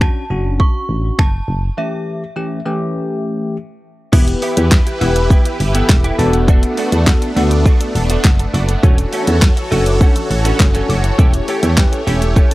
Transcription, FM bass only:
0, 0, Header, 1, 2, 480
1, 0, Start_track
1, 0, Tempo, 588235
1, 1449, Time_signature, 4, 2, 24, 8
1, 10234, End_track
2, 0, Start_track
2, 0, Title_t, "FM bass"
2, 0, Program_c, 0, 39
2, 247, Note_on_c, 0, 30, 91
2, 522, Note_off_c, 0, 30, 0
2, 726, Note_on_c, 0, 33, 89
2, 910, Note_off_c, 0, 33, 0
2, 970, Note_on_c, 0, 30, 96
2, 1152, Note_off_c, 0, 30, 0
2, 1209, Note_on_c, 0, 30, 94
2, 1391, Note_off_c, 0, 30, 0
2, 3369, Note_on_c, 0, 28, 121
2, 3552, Note_off_c, 0, 28, 0
2, 3731, Note_on_c, 0, 40, 104
2, 3913, Note_off_c, 0, 40, 0
2, 4091, Note_on_c, 0, 28, 93
2, 4364, Note_off_c, 0, 28, 0
2, 4571, Note_on_c, 0, 31, 90
2, 4753, Note_off_c, 0, 31, 0
2, 4809, Note_on_c, 0, 28, 99
2, 4992, Note_off_c, 0, 28, 0
2, 5049, Note_on_c, 0, 28, 109
2, 5414, Note_off_c, 0, 28, 0
2, 5650, Note_on_c, 0, 40, 94
2, 5832, Note_off_c, 0, 40, 0
2, 6009, Note_on_c, 0, 38, 98
2, 6283, Note_off_c, 0, 38, 0
2, 6489, Note_on_c, 0, 28, 96
2, 6671, Note_off_c, 0, 28, 0
2, 6728, Note_on_c, 0, 30, 97
2, 6911, Note_off_c, 0, 30, 0
2, 6967, Note_on_c, 0, 30, 104
2, 7150, Note_off_c, 0, 30, 0
2, 7209, Note_on_c, 0, 28, 111
2, 7391, Note_off_c, 0, 28, 0
2, 7569, Note_on_c, 0, 40, 98
2, 7751, Note_off_c, 0, 40, 0
2, 7930, Note_on_c, 0, 30, 99
2, 8203, Note_off_c, 0, 30, 0
2, 8408, Note_on_c, 0, 33, 87
2, 8591, Note_off_c, 0, 33, 0
2, 8650, Note_on_c, 0, 30, 96
2, 8832, Note_off_c, 0, 30, 0
2, 8889, Note_on_c, 0, 30, 102
2, 9071, Note_off_c, 0, 30, 0
2, 9129, Note_on_c, 0, 28, 113
2, 9311, Note_off_c, 0, 28, 0
2, 9490, Note_on_c, 0, 40, 101
2, 9672, Note_off_c, 0, 40, 0
2, 9851, Note_on_c, 0, 28, 96
2, 10124, Note_off_c, 0, 28, 0
2, 10234, End_track
0, 0, End_of_file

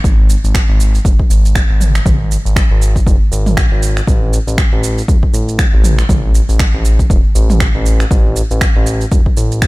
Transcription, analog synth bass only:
0, 0, Header, 1, 2, 480
1, 0, Start_track
1, 0, Tempo, 504202
1, 40, Time_signature, 4, 2, 24, 8
1, 9207, End_track
2, 0, Start_track
2, 0, Title_t, "Analog synth bass"
2, 0, Program_c, 0, 38
2, 42, Note_on_c, 0, 32, 97
2, 336, Note_off_c, 0, 32, 0
2, 420, Note_on_c, 0, 32, 86
2, 556, Note_off_c, 0, 32, 0
2, 657, Note_on_c, 0, 32, 98
2, 939, Note_off_c, 0, 32, 0
2, 999, Note_on_c, 0, 30, 89
2, 1086, Note_off_c, 0, 30, 0
2, 1239, Note_on_c, 0, 32, 85
2, 1535, Note_off_c, 0, 32, 0
2, 1616, Note_on_c, 0, 32, 84
2, 1898, Note_off_c, 0, 32, 0
2, 1959, Note_on_c, 0, 32, 99
2, 2255, Note_off_c, 0, 32, 0
2, 2336, Note_on_c, 0, 32, 86
2, 2474, Note_off_c, 0, 32, 0
2, 2577, Note_on_c, 0, 32, 101
2, 2859, Note_off_c, 0, 32, 0
2, 2920, Note_on_c, 0, 30, 88
2, 3007, Note_off_c, 0, 30, 0
2, 3157, Note_on_c, 0, 32, 87
2, 3454, Note_off_c, 0, 32, 0
2, 3538, Note_on_c, 0, 32, 83
2, 3819, Note_off_c, 0, 32, 0
2, 3880, Note_on_c, 0, 33, 96
2, 4176, Note_off_c, 0, 33, 0
2, 4256, Note_on_c, 0, 33, 83
2, 4394, Note_off_c, 0, 33, 0
2, 4497, Note_on_c, 0, 33, 98
2, 4779, Note_off_c, 0, 33, 0
2, 4839, Note_on_c, 0, 28, 89
2, 4926, Note_off_c, 0, 28, 0
2, 5079, Note_on_c, 0, 33, 86
2, 5375, Note_off_c, 0, 33, 0
2, 5460, Note_on_c, 0, 33, 84
2, 5740, Note_off_c, 0, 33, 0
2, 5800, Note_on_c, 0, 33, 95
2, 6096, Note_off_c, 0, 33, 0
2, 6178, Note_on_c, 0, 33, 86
2, 6315, Note_off_c, 0, 33, 0
2, 6419, Note_on_c, 0, 33, 96
2, 6700, Note_off_c, 0, 33, 0
2, 6759, Note_on_c, 0, 28, 88
2, 6846, Note_off_c, 0, 28, 0
2, 6999, Note_on_c, 0, 33, 90
2, 7295, Note_off_c, 0, 33, 0
2, 7378, Note_on_c, 0, 33, 88
2, 7659, Note_off_c, 0, 33, 0
2, 7719, Note_on_c, 0, 33, 99
2, 8015, Note_off_c, 0, 33, 0
2, 8099, Note_on_c, 0, 33, 89
2, 8235, Note_off_c, 0, 33, 0
2, 8336, Note_on_c, 0, 33, 100
2, 8618, Note_off_c, 0, 33, 0
2, 8680, Note_on_c, 0, 28, 89
2, 8767, Note_off_c, 0, 28, 0
2, 8919, Note_on_c, 0, 33, 87
2, 9207, Note_off_c, 0, 33, 0
2, 9207, End_track
0, 0, End_of_file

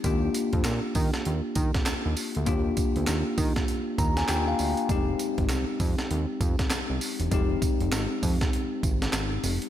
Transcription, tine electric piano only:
0, 0, Header, 1, 2, 480
1, 0, Start_track
1, 0, Tempo, 606061
1, 35, Time_signature, 4, 2, 24, 8
1, 7674, End_track
2, 0, Start_track
2, 0, Title_t, "Tine electric piano"
2, 0, Program_c, 0, 4
2, 0, Control_c, 0, 64, 127
2, 32, Note_on_c, 0, 58, 82
2, 37, Note_on_c, 0, 62, 75
2, 45, Control_c, 0, 64, 0
2, 46, Note_on_c, 0, 65, 69
2, 50, Note_on_c, 0, 67, 95
2, 177, Control_c, 0, 64, 127
2, 1922, Note_off_c, 0, 58, 0
2, 1924, Note_off_c, 0, 62, 0
2, 1929, Note_off_c, 0, 65, 0
2, 1931, Note_off_c, 0, 67, 0
2, 1950, Note_on_c, 0, 58, 81
2, 1956, Note_on_c, 0, 62, 73
2, 1962, Note_on_c, 0, 65, 74
2, 1970, Note_on_c, 0, 67, 94
2, 3157, Note_on_c, 0, 82, 77
2, 3291, Note_off_c, 0, 82, 0
2, 3305, Note_on_c, 0, 80, 75
2, 3363, Note_off_c, 0, 58, 0
2, 3367, Note_off_c, 0, 62, 0
2, 3369, Note_off_c, 0, 65, 0
2, 3374, Note_off_c, 0, 67, 0
2, 3391, Note_off_c, 0, 80, 0
2, 3396, Note_on_c, 0, 58, 60
2, 3398, Note_on_c, 0, 79, 81
2, 3400, Note_on_c, 0, 62, 53
2, 3400, Note_on_c, 0, 65, 54
2, 3405, Note_on_c, 0, 67, 63
2, 3532, Note_off_c, 0, 79, 0
2, 3546, Note_on_c, 0, 77, 76
2, 3854, Note_off_c, 0, 77, 0
2, 3874, Note_on_c, 0, 56, 83
2, 3875, Note_off_c, 0, 58, 0
2, 3877, Note_off_c, 0, 62, 0
2, 3877, Note_off_c, 0, 65, 0
2, 3880, Note_off_c, 0, 67, 0
2, 3880, Note_on_c, 0, 60, 74
2, 3886, Control_c, 0, 64, 0
2, 3887, Note_on_c, 0, 63, 75
2, 3893, Note_on_c, 0, 67, 89
2, 4032, Control_c, 0, 64, 127
2, 5763, Note_off_c, 0, 56, 0
2, 5766, Note_off_c, 0, 60, 0
2, 5769, Note_off_c, 0, 63, 0
2, 5772, Note_off_c, 0, 67, 0
2, 5792, Note_on_c, 0, 56, 80
2, 5799, Note_on_c, 0, 60, 69
2, 5803, Note_on_c, 0, 63, 74
2, 5812, Note_on_c, 0, 67, 91
2, 7674, Note_off_c, 0, 56, 0
2, 7674, Note_off_c, 0, 60, 0
2, 7674, Note_off_c, 0, 63, 0
2, 7674, Note_off_c, 0, 67, 0
2, 7674, End_track
0, 0, End_of_file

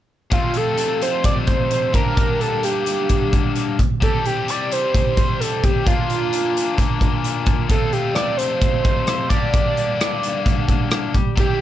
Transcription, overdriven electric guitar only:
0, 0, Header, 1, 2, 480
1, 0, Start_track
1, 0, Tempo, 460476
1, 343, Time_signature, 4, 2, 24, 8
1, 12103, End_track
2, 0, Start_track
2, 0, Title_t, "Overdriven electric guitar"
2, 0, Program_c, 0, 29
2, 318, Note_on_c, 0, 41, 68
2, 326, Note_on_c, 0, 48, 71
2, 336, Note_on_c, 0, 53, 84
2, 343, Note_on_c, 0, 57, 75
2, 348, Note_on_c, 0, 60, 77
2, 356, Note_on_c, 0, 65, 71
2, 2000, Note_off_c, 0, 41, 0
2, 2004, Note_on_c, 0, 43, 82
2, 2005, Note_off_c, 0, 48, 0
2, 2010, Note_off_c, 0, 53, 0
2, 2012, Note_on_c, 0, 50, 76
2, 2014, Note_off_c, 0, 57, 0
2, 2016, Note_off_c, 0, 60, 0
2, 2020, Note_off_c, 0, 65, 0
2, 2020, Note_on_c, 0, 55, 76
2, 2034, Note_on_c, 0, 58, 75
2, 2037, Note_on_c, 0, 62, 81
2, 2043, Note_on_c, 0, 67, 97
2, 3925, Note_off_c, 0, 43, 0
2, 3928, Note_off_c, 0, 50, 0
2, 3933, Note_off_c, 0, 55, 0
2, 3939, Note_off_c, 0, 58, 0
2, 3941, Note_off_c, 0, 62, 0
2, 3944, Note_off_c, 0, 67, 0
2, 4175, Note_on_c, 0, 48, 76
2, 4186, Note_on_c, 0, 52, 69
2, 4193, Note_on_c, 0, 55, 84
2, 4203, Note_on_c, 0, 60, 80
2, 4215, Note_on_c, 0, 67, 82
2, 6080, Note_off_c, 0, 48, 0
2, 6084, Note_on_c, 0, 46, 73
2, 6091, Note_off_c, 0, 52, 0
2, 6095, Note_on_c, 0, 50, 69
2, 6098, Note_off_c, 0, 55, 0
2, 6102, Note_off_c, 0, 60, 0
2, 6105, Note_on_c, 0, 58, 75
2, 6108, Note_off_c, 0, 67, 0
2, 6111, Note_on_c, 0, 62, 82
2, 6120, Note_on_c, 0, 65, 87
2, 8001, Note_off_c, 0, 46, 0
2, 8006, Note_off_c, 0, 50, 0
2, 8011, Note_off_c, 0, 58, 0
2, 8013, Note_on_c, 0, 41, 76
2, 8014, Note_off_c, 0, 62, 0
2, 8019, Note_off_c, 0, 65, 0
2, 8022, Note_on_c, 0, 48, 79
2, 8028, Note_on_c, 0, 53, 69
2, 8037, Note_on_c, 0, 57, 75
2, 8042, Note_on_c, 0, 60, 76
2, 8050, Note_on_c, 0, 65, 77
2, 9680, Note_off_c, 0, 41, 0
2, 9684, Note_on_c, 0, 43, 73
2, 9689, Note_off_c, 0, 48, 0
2, 9692, Note_off_c, 0, 53, 0
2, 9696, Note_off_c, 0, 57, 0
2, 9698, Note_off_c, 0, 60, 0
2, 9700, Note_on_c, 0, 50, 78
2, 9700, Note_on_c, 0, 55, 83
2, 9703, Note_off_c, 0, 65, 0
2, 9710, Note_on_c, 0, 58, 77
2, 9720, Note_on_c, 0, 62, 88
2, 9723, Note_on_c, 0, 67, 88
2, 11598, Note_off_c, 0, 43, 0
2, 11606, Note_off_c, 0, 50, 0
2, 11611, Note_off_c, 0, 58, 0
2, 11616, Note_off_c, 0, 62, 0
2, 11838, Note_on_c, 0, 48, 76
2, 11847, Note_off_c, 0, 55, 0
2, 11851, Note_on_c, 0, 52, 75
2, 11863, Note_on_c, 0, 55, 80
2, 11873, Note_on_c, 0, 64, 81
2, 11874, Note_off_c, 0, 67, 0
2, 11879, Note_on_c, 0, 67, 84
2, 12103, Note_off_c, 0, 48, 0
2, 12103, Note_off_c, 0, 52, 0
2, 12103, Note_off_c, 0, 55, 0
2, 12103, Note_off_c, 0, 64, 0
2, 12103, Note_off_c, 0, 67, 0
2, 12103, End_track
0, 0, End_of_file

